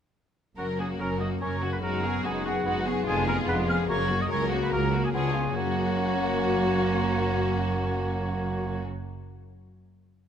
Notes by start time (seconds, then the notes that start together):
0.58 F#1 F#2 F#3 C#4 F#4 A#4 F#5
0.79 A#3 F#4 G#4 G#5
0.99 F#1 F#2 F#3 C#4 A#4 A#5
1.20 A#3 F#4 D#5 D#6
1.41 F#1 F#2 F#3 C#4 A#4 C#5 C#6
1.62 C#3 A#3 F#4
1.72 B4 B5
1.82 F#1 F#2 G#3 B3 D#4 F#4 G#4 A#4 A#5
2.03 B3 F#4 G#4
2.23 F#1 F#2 G#3 B3 D#4 F#4 G#4 G#5
2.45 B3 F#4 G#4 F#5
2.65 F#1 F#2 G#3 B3 D#4 F#4 G#4
2.86 F#3 B3 F#4 G#4
3.06 F1 F2 G#3 D4 F4 G#4 G#5
3.26 B3 F4 G#4 A#4 A#5
3.48 F1 F2 G#3 B3 D4 F4 G#4 B4 B5
3.68 B3 F4 G#4 F5 F6
3.89 F#1 F#2 F#3 A#3 C#4 F#4 A#4 C#5 C#6
4.09 A#3 C#4 F#4
4.21 D#5 D#6
4.29 C#2 C#3 F#3 C#4 A#4 C#5 C#6
4.50 A#3 C#4 F#4
4.62 B4 B5
4.71 C#2 F#3 A#3 C#4 F#4 A#4 A#5
4.92 A#3 F#4 A#4
5.04 G#4 G#5
5.14 C#2 C#3 B3 C#4 D4 F4 G#4 G#5
5.34 B3 C#4 D4 F4
5.56 F#1 F#2 A#3 C#4 F#4 C#5 F#5
5.64 F#3
5.71 A#3
5.78 C#4
5.85 F#4
5.92 C#5